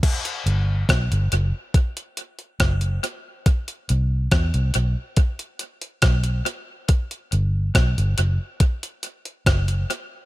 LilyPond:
<<
  \new Staff \with { instrumentName = "Fingered electric bass" } { \clef bass \time 4/4 \key g \major \tempo 4 = 70 r8 g,,8 b,,16 g,,16 fis,,16 r4 r16 fis,,8 r8 | r8 c,8 e,16 c,16 b,,16 r4 r16 b,,8 r8 | r8 g,,8 b,,16 g,,16 fis,,16 r4 r16 fis,,8 r8 | }
  \new DrumStaff \with { instrumentName = "Drums" } \drummode { \time 4/4 <cymc hh bd>16 hh16 hh8 <hh bd ss>16 hh16 hh8 <hh bd>16 hh16 hh16 hh16 <hh bd ss>16 hh16 hh8 | <hh bd>16 hh16 hh8 <hh bd ss>16 hh16 hh8 <hh bd>16 hh16 hh16 hh16 <hh bd ss>16 hh16 hh8 | <hh bd>16 hh16 hh8 <hh bd ss>16 hh16 hh8 <hh bd>16 hh16 hh16 hh16 <hh bd ss>16 hh16 hh8 | }
>>